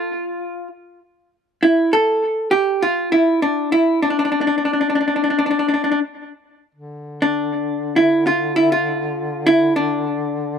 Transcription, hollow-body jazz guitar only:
0, 0, Header, 1, 2, 480
1, 0, Start_track
1, 0, Tempo, 603622
1, 1043, Time_signature, 9, 3, 24, 8
1, 8418, End_track
2, 0, Start_track
2, 0, Title_t, "Hollow-body jazz guitar"
2, 0, Program_c, 0, 26
2, 0, Note_on_c, 0, 65, 78
2, 535, Note_off_c, 0, 65, 0
2, 1293, Note_on_c, 0, 64, 77
2, 1512, Note_off_c, 0, 64, 0
2, 1535, Note_on_c, 0, 69, 85
2, 1993, Note_off_c, 0, 69, 0
2, 1996, Note_on_c, 0, 67, 90
2, 2246, Note_on_c, 0, 65, 84
2, 2247, Note_off_c, 0, 67, 0
2, 2478, Note_off_c, 0, 65, 0
2, 2481, Note_on_c, 0, 64, 79
2, 2719, Note_off_c, 0, 64, 0
2, 2722, Note_on_c, 0, 62, 76
2, 2956, Note_off_c, 0, 62, 0
2, 2959, Note_on_c, 0, 64, 83
2, 3197, Note_off_c, 0, 64, 0
2, 3201, Note_on_c, 0, 62, 70
2, 3253, Note_off_c, 0, 62, 0
2, 3263, Note_on_c, 0, 62, 55
2, 3319, Note_off_c, 0, 62, 0
2, 3332, Note_on_c, 0, 62, 58
2, 3369, Note_off_c, 0, 62, 0
2, 3379, Note_on_c, 0, 62, 50
2, 3424, Note_off_c, 0, 62, 0
2, 3433, Note_on_c, 0, 62, 54
2, 3494, Note_off_c, 0, 62, 0
2, 3509, Note_on_c, 0, 62, 49
2, 3546, Note_off_c, 0, 62, 0
2, 3556, Note_on_c, 0, 62, 54
2, 3616, Note_off_c, 0, 62, 0
2, 3640, Note_on_c, 0, 62, 44
2, 3689, Note_off_c, 0, 62, 0
2, 3699, Note_on_c, 0, 62, 47
2, 3748, Note_off_c, 0, 62, 0
2, 3764, Note_on_c, 0, 62, 42
2, 3811, Note_off_c, 0, 62, 0
2, 3823, Note_on_c, 0, 62, 49
2, 3870, Note_off_c, 0, 62, 0
2, 3894, Note_on_c, 0, 62, 47
2, 3929, Note_off_c, 0, 62, 0
2, 3939, Note_on_c, 0, 62, 53
2, 3972, Note_off_c, 0, 62, 0
2, 3981, Note_on_c, 0, 62, 42
2, 4028, Note_off_c, 0, 62, 0
2, 4037, Note_on_c, 0, 62, 45
2, 4093, Note_off_c, 0, 62, 0
2, 4102, Note_on_c, 0, 62, 44
2, 4155, Note_off_c, 0, 62, 0
2, 4165, Note_on_c, 0, 62, 47
2, 4207, Note_off_c, 0, 62, 0
2, 4216, Note_on_c, 0, 62, 41
2, 4273, Note_off_c, 0, 62, 0
2, 4283, Note_on_c, 0, 62, 58
2, 4333, Note_off_c, 0, 62, 0
2, 4343, Note_on_c, 0, 62, 49
2, 4369, Note_off_c, 0, 62, 0
2, 4378, Note_on_c, 0, 62, 54
2, 4437, Note_off_c, 0, 62, 0
2, 4447, Note_on_c, 0, 62, 50
2, 4511, Note_off_c, 0, 62, 0
2, 4521, Note_on_c, 0, 62, 48
2, 4553, Note_off_c, 0, 62, 0
2, 4563, Note_on_c, 0, 62, 43
2, 4629, Note_off_c, 0, 62, 0
2, 4644, Note_on_c, 0, 62, 50
2, 4694, Note_off_c, 0, 62, 0
2, 4704, Note_on_c, 0, 62, 51
2, 4761, Note_off_c, 0, 62, 0
2, 5741, Note_on_c, 0, 62, 75
2, 6329, Note_off_c, 0, 62, 0
2, 6332, Note_on_c, 0, 64, 82
2, 6571, Note_off_c, 0, 64, 0
2, 6574, Note_on_c, 0, 65, 85
2, 6804, Note_off_c, 0, 65, 0
2, 6808, Note_on_c, 0, 64, 89
2, 6931, Note_off_c, 0, 64, 0
2, 6934, Note_on_c, 0, 65, 84
2, 7523, Note_off_c, 0, 65, 0
2, 7527, Note_on_c, 0, 64, 93
2, 7759, Note_off_c, 0, 64, 0
2, 7762, Note_on_c, 0, 62, 75
2, 8418, Note_off_c, 0, 62, 0
2, 8418, End_track
0, 0, End_of_file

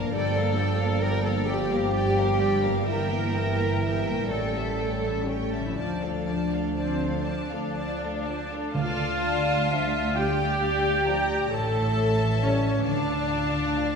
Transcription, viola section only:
0, 0, Header, 1, 2, 480
1, 0, Start_track
1, 0, Key_signature, -1, "minor"
1, 0, Tempo, 896861
1, 72, Time_signature, 6, 3, 24, 8
1, 1032, Tempo, 937500
1, 1992, Tempo, 988468
1, 4392, Tempo, 944882
1, 4872, Tempo, 902256
1, 7141, End_track
2, 0, Start_track
2, 0, Title_t, "Viola section"
2, 0, Program_c, 0, 48
2, 0, Note_on_c, 0, 58, 55
2, 72, Note_off_c, 0, 58, 0
2, 73, Note_on_c, 0, 55, 59
2, 183, Note_off_c, 0, 55, 0
2, 183, Note_on_c, 0, 58, 53
2, 300, Note_on_c, 0, 55, 55
2, 304, Note_off_c, 0, 58, 0
2, 421, Note_off_c, 0, 55, 0
2, 427, Note_on_c, 0, 58, 49
2, 545, Note_off_c, 0, 58, 0
2, 545, Note_on_c, 0, 55, 48
2, 656, Note_off_c, 0, 55, 0
2, 671, Note_on_c, 0, 58, 52
2, 783, Note_on_c, 0, 55, 54
2, 789, Note_off_c, 0, 58, 0
2, 905, Note_on_c, 0, 58, 49
2, 908, Note_off_c, 0, 55, 0
2, 1031, Note_off_c, 0, 58, 0
2, 1032, Note_on_c, 0, 55, 49
2, 1143, Note_off_c, 0, 55, 0
2, 1151, Note_on_c, 0, 58, 52
2, 1268, Note_on_c, 0, 55, 53
2, 1270, Note_off_c, 0, 58, 0
2, 1387, Note_on_c, 0, 58, 53
2, 1388, Note_off_c, 0, 55, 0
2, 1507, Note_off_c, 0, 58, 0
2, 1508, Note_on_c, 0, 55, 58
2, 1620, Note_off_c, 0, 55, 0
2, 1632, Note_on_c, 0, 58, 51
2, 1751, Note_off_c, 0, 58, 0
2, 1755, Note_on_c, 0, 55, 53
2, 1873, Note_off_c, 0, 55, 0
2, 1877, Note_on_c, 0, 58, 49
2, 1993, Note_on_c, 0, 55, 43
2, 1996, Note_off_c, 0, 58, 0
2, 2102, Note_off_c, 0, 55, 0
2, 2111, Note_on_c, 0, 58, 44
2, 2228, Note_off_c, 0, 58, 0
2, 2232, Note_on_c, 0, 57, 48
2, 2340, Note_off_c, 0, 57, 0
2, 2355, Note_on_c, 0, 55, 42
2, 2469, Note_off_c, 0, 55, 0
2, 2475, Note_on_c, 0, 57, 43
2, 2589, Note_off_c, 0, 57, 0
2, 2592, Note_on_c, 0, 55, 43
2, 2707, Note_off_c, 0, 55, 0
2, 2708, Note_on_c, 0, 57, 43
2, 2817, Note_off_c, 0, 57, 0
2, 2830, Note_on_c, 0, 55, 40
2, 2949, Note_off_c, 0, 55, 0
2, 2956, Note_on_c, 0, 53, 44
2, 3064, Note_off_c, 0, 53, 0
2, 3077, Note_on_c, 0, 57, 39
2, 3194, Note_off_c, 0, 57, 0
2, 3197, Note_on_c, 0, 53, 40
2, 3314, Note_off_c, 0, 53, 0
2, 3318, Note_on_c, 0, 57, 36
2, 3433, Note_off_c, 0, 57, 0
2, 3443, Note_on_c, 0, 60, 53
2, 3445, Note_on_c, 0, 53, 38
2, 3548, Note_off_c, 0, 53, 0
2, 3565, Note_on_c, 0, 57, 35
2, 3656, Note_off_c, 0, 60, 0
2, 3674, Note_off_c, 0, 57, 0
2, 3678, Note_on_c, 0, 53, 38
2, 3679, Note_on_c, 0, 62, 61
2, 3790, Note_off_c, 0, 53, 0
2, 3795, Note_on_c, 0, 57, 34
2, 3911, Note_off_c, 0, 57, 0
2, 3915, Note_on_c, 0, 53, 35
2, 4025, Note_off_c, 0, 53, 0
2, 4041, Note_on_c, 0, 57, 39
2, 4159, Note_off_c, 0, 57, 0
2, 4163, Note_on_c, 0, 53, 34
2, 4280, Note_off_c, 0, 53, 0
2, 4289, Note_on_c, 0, 57, 46
2, 4398, Note_off_c, 0, 57, 0
2, 4399, Note_off_c, 0, 62, 0
2, 4406, Note_on_c, 0, 65, 87
2, 5112, Note_off_c, 0, 65, 0
2, 5131, Note_on_c, 0, 67, 88
2, 5849, Note_off_c, 0, 67, 0
2, 5850, Note_on_c, 0, 69, 84
2, 6315, Note_off_c, 0, 69, 0
2, 6330, Note_on_c, 0, 61, 68
2, 6564, Note_off_c, 0, 61, 0
2, 6571, Note_on_c, 0, 62, 79
2, 7141, Note_off_c, 0, 62, 0
2, 7141, End_track
0, 0, End_of_file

